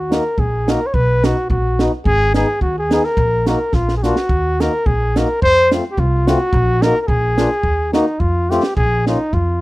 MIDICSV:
0, 0, Header, 1, 5, 480
1, 0, Start_track
1, 0, Key_signature, -6, "minor"
1, 0, Tempo, 559701
1, 810, Time_signature, 2, 2, 24, 8
1, 8243, End_track
2, 0, Start_track
2, 0, Title_t, "Trumpet"
2, 0, Program_c, 0, 56
2, 0, Note_on_c, 0, 66, 61
2, 122, Note_off_c, 0, 66, 0
2, 126, Note_on_c, 0, 70, 72
2, 336, Note_on_c, 0, 68, 65
2, 349, Note_off_c, 0, 70, 0
2, 607, Note_on_c, 0, 70, 83
2, 620, Note_off_c, 0, 68, 0
2, 742, Note_on_c, 0, 73, 63
2, 755, Note_off_c, 0, 70, 0
2, 809, Note_on_c, 0, 71, 103
2, 822, Note_off_c, 0, 73, 0
2, 1070, Note_on_c, 0, 66, 86
2, 1083, Note_off_c, 0, 71, 0
2, 1287, Note_off_c, 0, 66, 0
2, 1292, Note_on_c, 0, 66, 72
2, 1634, Note_off_c, 0, 66, 0
2, 1766, Note_on_c, 0, 68, 108
2, 2006, Note_off_c, 0, 68, 0
2, 2021, Note_on_c, 0, 68, 83
2, 2228, Note_off_c, 0, 68, 0
2, 2245, Note_on_c, 0, 66, 69
2, 2365, Note_off_c, 0, 66, 0
2, 2391, Note_on_c, 0, 68, 80
2, 2613, Note_on_c, 0, 70, 85
2, 2626, Note_off_c, 0, 68, 0
2, 2982, Note_off_c, 0, 70, 0
2, 2986, Note_on_c, 0, 70, 69
2, 3211, Note_on_c, 0, 65, 69
2, 3224, Note_off_c, 0, 70, 0
2, 3398, Note_off_c, 0, 65, 0
2, 3403, Note_on_c, 0, 68, 57
2, 3456, Note_on_c, 0, 66, 78
2, 3469, Note_off_c, 0, 68, 0
2, 3950, Note_on_c, 0, 70, 77
2, 3962, Note_off_c, 0, 66, 0
2, 4170, Note_on_c, 0, 68, 72
2, 4183, Note_off_c, 0, 70, 0
2, 4440, Note_on_c, 0, 70, 79
2, 4453, Note_off_c, 0, 68, 0
2, 4646, Note_off_c, 0, 70, 0
2, 4652, Note_on_c, 0, 72, 123
2, 4889, Note_off_c, 0, 72, 0
2, 5073, Note_on_c, 0, 67, 65
2, 5142, Note_on_c, 0, 65, 74
2, 5155, Note_off_c, 0, 67, 0
2, 5381, Note_on_c, 0, 66, 87
2, 5394, Note_off_c, 0, 65, 0
2, 5851, Note_on_c, 0, 70, 98
2, 5864, Note_off_c, 0, 66, 0
2, 6013, Note_off_c, 0, 70, 0
2, 6013, Note_on_c, 0, 70, 60
2, 6068, Note_on_c, 0, 68, 85
2, 6081, Note_off_c, 0, 70, 0
2, 6797, Note_off_c, 0, 68, 0
2, 6803, Note_on_c, 0, 63, 59
2, 7029, Note_on_c, 0, 65, 66
2, 7042, Note_off_c, 0, 63, 0
2, 7293, Note_on_c, 0, 67, 72
2, 7306, Note_off_c, 0, 65, 0
2, 7508, Note_off_c, 0, 67, 0
2, 7513, Note_on_c, 0, 68, 90
2, 7758, Note_off_c, 0, 68, 0
2, 7780, Note_on_c, 0, 63, 75
2, 8006, Note_on_c, 0, 65, 80
2, 8018, Note_off_c, 0, 63, 0
2, 8243, Note_off_c, 0, 65, 0
2, 8243, End_track
3, 0, Start_track
3, 0, Title_t, "Accordion"
3, 0, Program_c, 1, 21
3, 91, Note_on_c, 1, 63, 59
3, 94, Note_on_c, 1, 66, 62
3, 95, Note_on_c, 1, 58, 53
3, 198, Note_off_c, 1, 63, 0
3, 199, Note_off_c, 1, 66, 0
3, 200, Note_off_c, 1, 58, 0
3, 582, Note_on_c, 1, 58, 65
3, 582, Note_on_c, 1, 63, 58
3, 583, Note_on_c, 1, 66, 69
3, 686, Note_off_c, 1, 58, 0
3, 686, Note_off_c, 1, 63, 0
3, 686, Note_off_c, 1, 66, 0
3, 1065, Note_on_c, 1, 59, 57
3, 1065, Note_on_c, 1, 66, 61
3, 1070, Note_on_c, 1, 63, 53
3, 1167, Note_off_c, 1, 59, 0
3, 1167, Note_off_c, 1, 66, 0
3, 1169, Note_off_c, 1, 63, 0
3, 1545, Note_on_c, 1, 63, 56
3, 1546, Note_on_c, 1, 59, 66
3, 1546, Note_on_c, 1, 66, 75
3, 1646, Note_off_c, 1, 59, 0
3, 1646, Note_off_c, 1, 63, 0
3, 1646, Note_off_c, 1, 66, 0
3, 2016, Note_on_c, 1, 59, 57
3, 2016, Note_on_c, 1, 63, 65
3, 2017, Note_on_c, 1, 68, 78
3, 2120, Note_off_c, 1, 59, 0
3, 2120, Note_off_c, 1, 63, 0
3, 2120, Note_off_c, 1, 68, 0
3, 2495, Note_on_c, 1, 59, 66
3, 2495, Note_on_c, 1, 63, 56
3, 2499, Note_on_c, 1, 68, 82
3, 2598, Note_off_c, 1, 59, 0
3, 2598, Note_off_c, 1, 63, 0
3, 2600, Note_off_c, 1, 68, 0
3, 2969, Note_on_c, 1, 58, 54
3, 2975, Note_on_c, 1, 66, 76
3, 2978, Note_on_c, 1, 63, 53
3, 3075, Note_off_c, 1, 58, 0
3, 3078, Note_off_c, 1, 66, 0
3, 3079, Note_off_c, 1, 63, 0
3, 3463, Note_on_c, 1, 58, 65
3, 3466, Note_on_c, 1, 62, 51
3, 3468, Note_on_c, 1, 65, 64
3, 3563, Note_off_c, 1, 58, 0
3, 3565, Note_off_c, 1, 62, 0
3, 3566, Note_off_c, 1, 65, 0
3, 3955, Note_on_c, 1, 58, 51
3, 3957, Note_on_c, 1, 63, 57
3, 3958, Note_on_c, 1, 66, 62
3, 4052, Note_off_c, 1, 58, 0
3, 4053, Note_off_c, 1, 63, 0
3, 4053, Note_off_c, 1, 66, 0
3, 4427, Note_on_c, 1, 66, 69
3, 4430, Note_on_c, 1, 58, 64
3, 4431, Note_on_c, 1, 63, 68
3, 4529, Note_off_c, 1, 66, 0
3, 4530, Note_off_c, 1, 58, 0
3, 4530, Note_off_c, 1, 63, 0
3, 4905, Note_on_c, 1, 57, 63
3, 4910, Note_on_c, 1, 60, 52
3, 4913, Note_on_c, 1, 65, 73
3, 5005, Note_off_c, 1, 57, 0
3, 5007, Note_off_c, 1, 60, 0
3, 5008, Note_off_c, 1, 65, 0
3, 5375, Note_on_c, 1, 60, 66
3, 5376, Note_on_c, 1, 57, 73
3, 5382, Note_on_c, 1, 65, 87
3, 5477, Note_off_c, 1, 57, 0
3, 5477, Note_off_c, 1, 60, 0
3, 5480, Note_off_c, 1, 65, 0
3, 5868, Note_on_c, 1, 63, 62
3, 5870, Note_on_c, 1, 58, 53
3, 5874, Note_on_c, 1, 66, 70
3, 5960, Note_off_c, 1, 63, 0
3, 5961, Note_off_c, 1, 58, 0
3, 5963, Note_off_c, 1, 66, 0
3, 6322, Note_on_c, 1, 58, 60
3, 6332, Note_on_c, 1, 62, 58
3, 6333, Note_on_c, 1, 65, 70
3, 6425, Note_off_c, 1, 58, 0
3, 6430, Note_off_c, 1, 62, 0
3, 6430, Note_off_c, 1, 65, 0
3, 6804, Note_on_c, 1, 58, 67
3, 6804, Note_on_c, 1, 63, 62
3, 6809, Note_on_c, 1, 66, 77
3, 6908, Note_off_c, 1, 58, 0
3, 6908, Note_off_c, 1, 63, 0
3, 6910, Note_off_c, 1, 66, 0
3, 7294, Note_on_c, 1, 57, 77
3, 7297, Note_on_c, 1, 65, 81
3, 7300, Note_on_c, 1, 60, 68
3, 7397, Note_off_c, 1, 57, 0
3, 7398, Note_off_c, 1, 65, 0
3, 7400, Note_off_c, 1, 60, 0
3, 7777, Note_on_c, 1, 58, 59
3, 7781, Note_on_c, 1, 61, 41
3, 7783, Note_on_c, 1, 65, 59
3, 7878, Note_off_c, 1, 58, 0
3, 7881, Note_off_c, 1, 61, 0
3, 7882, Note_off_c, 1, 65, 0
3, 8243, End_track
4, 0, Start_track
4, 0, Title_t, "Upright bass"
4, 0, Program_c, 2, 32
4, 0, Note_on_c, 2, 39, 82
4, 154, Note_off_c, 2, 39, 0
4, 328, Note_on_c, 2, 34, 85
4, 642, Note_off_c, 2, 34, 0
4, 811, Note_on_c, 2, 35, 85
4, 1123, Note_off_c, 2, 35, 0
4, 1287, Note_on_c, 2, 34, 94
4, 1599, Note_off_c, 2, 34, 0
4, 1765, Note_on_c, 2, 32, 97
4, 2076, Note_off_c, 2, 32, 0
4, 2242, Note_on_c, 2, 39, 87
4, 2554, Note_off_c, 2, 39, 0
4, 2723, Note_on_c, 2, 34, 104
4, 3035, Note_off_c, 2, 34, 0
4, 3200, Note_on_c, 2, 34, 74
4, 3515, Note_off_c, 2, 34, 0
4, 3688, Note_on_c, 2, 39, 80
4, 4003, Note_off_c, 2, 39, 0
4, 4172, Note_on_c, 2, 34, 84
4, 4483, Note_off_c, 2, 34, 0
4, 4656, Note_on_c, 2, 41, 79
4, 4963, Note_off_c, 2, 41, 0
4, 5126, Note_on_c, 2, 36, 97
4, 5435, Note_off_c, 2, 36, 0
4, 5605, Note_on_c, 2, 34, 102
4, 5911, Note_off_c, 2, 34, 0
4, 6080, Note_on_c, 2, 34, 87
4, 6388, Note_off_c, 2, 34, 0
4, 6552, Note_on_c, 2, 39, 75
4, 6866, Note_off_c, 2, 39, 0
4, 7039, Note_on_c, 2, 41, 76
4, 7354, Note_off_c, 2, 41, 0
4, 7520, Note_on_c, 2, 34, 96
4, 7833, Note_off_c, 2, 34, 0
4, 8005, Note_on_c, 2, 41, 88
4, 8243, Note_off_c, 2, 41, 0
4, 8243, End_track
5, 0, Start_track
5, 0, Title_t, "Drums"
5, 100, Note_on_c, 9, 38, 76
5, 100, Note_on_c, 9, 44, 43
5, 186, Note_off_c, 9, 38, 0
5, 186, Note_off_c, 9, 44, 0
5, 323, Note_on_c, 9, 36, 68
5, 409, Note_off_c, 9, 36, 0
5, 583, Note_on_c, 9, 38, 81
5, 583, Note_on_c, 9, 44, 44
5, 669, Note_off_c, 9, 38, 0
5, 669, Note_off_c, 9, 44, 0
5, 805, Note_on_c, 9, 36, 78
5, 890, Note_off_c, 9, 36, 0
5, 1061, Note_on_c, 9, 38, 89
5, 1061, Note_on_c, 9, 44, 47
5, 1146, Note_off_c, 9, 38, 0
5, 1146, Note_off_c, 9, 44, 0
5, 1284, Note_on_c, 9, 36, 58
5, 1370, Note_off_c, 9, 36, 0
5, 1537, Note_on_c, 9, 38, 76
5, 1537, Note_on_c, 9, 44, 47
5, 1622, Note_off_c, 9, 38, 0
5, 1622, Note_off_c, 9, 44, 0
5, 1762, Note_on_c, 9, 36, 74
5, 1847, Note_off_c, 9, 36, 0
5, 2009, Note_on_c, 9, 38, 74
5, 2009, Note_on_c, 9, 44, 45
5, 2095, Note_off_c, 9, 38, 0
5, 2095, Note_off_c, 9, 44, 0
5, 2239, Note_on_c, 9, 36, 64
5, 2325, Note_off_c, 9, 36, 0
5, 2495, Note_on_c, 9, 38, 79
5, 2495, Note_on_c, 9, 44, 40
5, 2580, Note_off_c, 9, 38, 0
5, 2580, Note_off_c, 9, 44, 0
5, 2608, Note_on_c, 9, 38, 24
5, 2694, Note_off_c, 9, 38, 0
5, 2718, Note_on_c, 9, 36, 80
5, 2804, Note_off_c, 9, 36, 0
5, 2971, Note_on_c, 9, 38, 69
5, 2971, Note_on_c, 9, 44, 45
5, 3057, Note_off_c, 9, 38, 0
5, 3057, Note_off_c, 9, 44, 0
5, 3194, Note_on_c, 9, 38, 42
5, 3198, Note_on_c, 9, 36, 58
5, 3280, Note_off_c, 9, 38, 0
5, 3284, Note_off_c, 9, 36, 0
5, 3330, Note_on_c, 9, 38, 47
5, 3416, Note_off_c, 9, 38, 0
5, 3461, Note_on_c, 9, 38, 52
5, 3461, Note_on_c, 9, 44, 40
5, 3547, Note_off_c, 9, 38, 0
5, 3547, Note_off_c, 9, 44, 0
5, 3568, Note_on_c, 9, 38, 59
5, 3654, Note_off_c, 9, 38, 0
5, 3682, Note_on_c, 9, 36, 84
5, 3768, Note_off_c, 9, 36, 0
5, 3948, Note_on_c, 9, 38, 68
5, 3948, Note_on_c, 9, 44, 46
5, 4033, Note_off_c, 9, 38, 0
5, 4033, Note_off_c, 9, 44, 0
5, 4168, Note_on_c, 9, 36, 71
5, 4254, Note_off_c, 9, 36, 0
5, 4425, Note_on_c, 9, 38, 78
5, 4425, Note_on_c, 9, 44, 46
5, 4510, Note_off_c, 9, 38, 0
5, 4510, Note_off_c, 9, 44, 0
5, 4650, Note_on_c, 9, 36, 88
5, 4736, Note_off_c, 9, 36, 0
5, 4901, Note_on_c, 9, 38, 85
5, 4901, Note_on_c, 9, 44, 45
5, 4986, Note_off_c, 9, 38, 0
5, 4986, Note_off_c, 9, 44, 0
5, 5124, Note_on_c, 9, 36, 58
5, 5209, Note_off_c, 9, 36, 0
5, 5381, Note_on_c, 9, 38, 82
5, 5381, Note_on_c, 9, 44, 54
5, 5466, Note_off_c, 9, 38, 0
5, 5466, Note_off_c, 9, 44, 0
5, 5597, Note_on_c, 9, 36, 90
5, 5683, Note_off_c, 9, 36, 0
5, 5851, Note_on_c, 9, 38, 92
5, 5851, Note_on_c, 9, 44, 46
5, 5937, Note_off_c, 9, 38, 0
5, 5937, Note_off_c, 9, 44, 0
5, 6074, Note_on_c, 9, 36, 73
5, 6159, Note_off_c, 9, 36, 0
5, 6326, Note_on_c, 9, 38, 85
5, 6326, Note_on_c, 9, 44, 46
5, 6412, Note_off_c, 9, 38, 0
5, 6412, Note_off_c, 9, 44, 0
5, 6547, Note_on_c, 9, 36, 70
5, 6633, Note_off_c, 9, 36, 0
5, 6805, Note_on_c, 9, 38, 74
5, 6805, Note_on_c, 9, 44, 46
5, 6890, Note_off_c, 9, 38, 0
5, 6890, Note_off_c, 9, 44, 0
5, 7032, Note_on_c, 9, 36, 66
5, 7118, Note_off_c, 9, 36, 0
5, 7299, Note_on_c, 9, 38, 45
5, 7299, Note_on_c, 9, 44, 45
5, 7385, Note_off_c, 9, 38, 0
5, 7385, Note_off_c, 9, 44, 0
5, 7403, Note_on_c, 9, 38, 66
5, 7489, Note_off_c, 9, 38, 0
5, 7519, Note_on_c, 9, 36, 75
5, 7604, Note_off_c, 9, 36, 0
5, 7775, Note_on_c, 9, 38, 70
5, 7861, Note_off_c, 9, 38, 0
5, 8001, Note_on_c, 9, 36, 68
5, 8087, Note_off_c, 9, 36, 0
5, 8243, End_track
0, 0, End_of_file